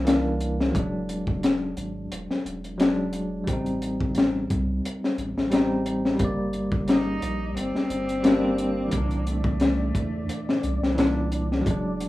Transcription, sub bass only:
0.00 0.72 C2 medium
0.75 1.74 E1 medium
1.77 2.07 G#1 loud
2.11 2.27 E1 medium
2.45 3.44 E1 medium
3.47 4.47 A1 loud
4.50 4.80 C2 loud
5.18 5.34 A1 loud
5.36 6.17 A1 medium
6.20 7.19 G1 loud
7.22 7.53 A#1 loud
7.56 7.72 G1 medium
7.89 8.89 G1 medium
8.93 9.92 C2 medium
9.95 10.25 E2 loud
10.63 10.79 C2 loud
10.81 11.62 C2 medium
11.66 12.09 E1 medium

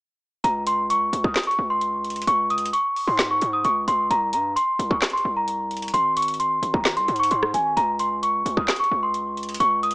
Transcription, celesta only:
0.44 0.62 A#5 loud
0.67 0.85 C6 medium
0.90 1.22 C#6 medium
1.25 1.42 D#6 medium
1.47 1.65 C#6 medium
1.70 2.24 C6 medium
2.28 2.45 C#6 loud
2.50 2.68 D#6 medium
2.73 3.05 C#6 medium
3.07 3.25 C6 medium
3.31 3.48 C#6 medium
3.53 3.62 D#6 medium
3.65 3.83 C#6 medium
3.88 4.06 C6 medium
4.11 4.29 A#5 loud
4.34 4.51 A#5 medium
4.56 4.89 C6 medium
4.91 5.09 C#6 medium
5.13 5.31 C6 medium
5.37 5.90 A#5 medium
5.94 6.12 C6 loud
6.17 6.35 C#6 medium
6.40 6.72 C6 medium
6.74 6.92 A#5 medium
6.97 7.15 C6 medium
7.19 7.29 C#6 medium
7.31 7.49 C6 medium
7.54 7.72 G#5 medium
7.77 7.95 A#5 loud
8.00 8.18 C6 medium
8.23 8.55 C#6 medium
8.57 8.75 D#6 medium
8.80 8.98 C#6 medium
9.03 9.57 C6 medium
9.60 9.78 C#6 loud
9.83 9.95 D#6 medium

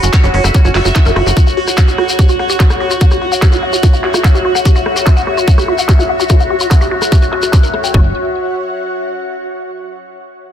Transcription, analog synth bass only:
0.03 0.10 F#1 medium
0.24 0.30 F#1 medium
0.34 0.40 F#1 loud
0.44 0.51 F#1 loud
0.65 0.71 F#1 medium
0.75 0.82 F#1 loud
0.85 0.92 F#1 medium
1.06 1.12 F#1 medium
1.16 1.23 F#1 loud
1.26 1.33 F#1 loud
7.94 8.13 F#1 medium

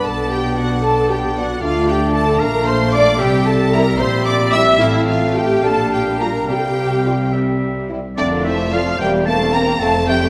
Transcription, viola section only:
0.05 0.32 A4 medium
0.32 0.57 G4 medium
0.57 0.83 F#4 medium
0.83 1.09 A4 medium
1.09 1.36 G4 medium
1.36 1.62 F#4 medium
1.62 1.88 F4 medium
1.88 2.15 G4 medium
2.15 2.41 A4 medium
2.41 2.68 A#4 medium
2.68 2.94 C5 medium
2.94 3.20 D5 loud
3.21 3.47 G4 loud
3.47 3.74 A4 medium
3.74 4.00 A#4 loud
4.00 4.27 C5 loud
4.26 4.53 D5 loud
4.53 4.81 E5 loud
4.80 5.08 E4 loud
5.08 5.36 F4 medium
5.36 5.64 G4 loud
5.65 5.93 A4 medium
5.92 6.20 G4 medium
6.21 6.49 A#4 medium
6.49 6.52 G4 medium
6.56 6.64 A4 medium
6.63 7.34 G4 medium
8.18 8.44 D4 medium
8.46 8.73 E4 medium
8.73 8.81 F4 medium
9.01 9.27 G4 medium
9.27 9.54 A4 medium
9.53 9.81 A#4 medium
9.81 10.08 A4 medium
10.08 10.16 G4 medium

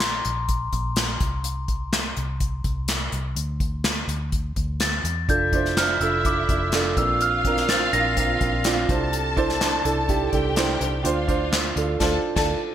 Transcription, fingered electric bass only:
0.00 0.21 A#1 medium
0.25 0.70 A#1 medium
0.72 1.17 A#1 medium
1.21 2.13 C2 medium
2.17 2.62 C2 medium
2.64 3.09 C2 medium
3.12 3.35 C2 medium
3.36 4.05 D2 medium
4.08 4.53 D2 medium
4.56 5.01 D2 medium
5.04 5.26 E2 medium
5.29 5.97 F1 medium
6.00 6.45 F1 medium
6.49 6.93 F1 medium
6.97 7.89 A#1 medium
7.93 8.37 A#1 medium
8.41 8.85 A#1 medium
8.89 9.81 C2 medium
9.85 10.29 C2 medium
10.33 10.77 C2 medium
10.81 11.03 C2 medium
11.04 11.73 D2 medium
11.76 11.98 D2 medium
12.00 12.17 D2 medium
12.36 12.53 D2 medium

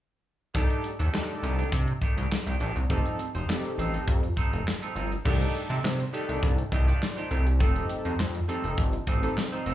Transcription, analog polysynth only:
0.54 0.90 D4 medium
0.54 0.90 D#4 medium
0.54 0.91 G4 medium
0.54 0.91 A4 medium
1.13 1.85 D4 medium
1.13 1.85 D#4 medium
1.13 1.85 G4 medium
1.13 1.85 A4 medium
2.89 3.25 C4 medium
2.89 3.26 D#4 medium
2.89 3.26 G4 medium
2.89 3.26 A4 medium
3.48 4.20 C4 medium
3.48 4.20 D#4 medium
3.48 4.20 G4 medium
3.48 4.20 A4 medium
5.25 5.78 D4 medium
5.25 5.79 D#4 medium
5.25 5.79 G4 medium
5.25 5.79 A4 medium
6.13 6.58 D4 medium
6.13 6.58 D#4 medium
6.13 6.59 G4 medium
6.13 6.59 A4 medium
6.72 6.87 G4 medium
6.72 6.87 D#5 medium
6.88 7.16 F4 medium
6.88 7.16 D5 medium
7.17 7.31 D#4 medium
7.17 7.30 C5 medium
7.30 7.46 C4 medium
7.30 7.46 A4 medium
7.46 7.59 G4 medium
7.59 8.13 C4 medium
7.59 8.14 D#4 medium
7.59 8.14 G4 medium
7.59 8.14 A4 loud
8.48 8.94 C4 medium
8.48 8.94 D#4 medium
8.48 8.94 G4 medium
8.48 8.94 A4 medium
9.23 9.66 C4 medium
9.23 9.37 D#4 medium
9.23 9.37 G4 medium
9.23 9.37 A4 medium
9.52 9.66 D#4 medium
9.52 9.65 C5 medium
9.66 9.74 G4 medium
9.66 9.74 D#5 medium

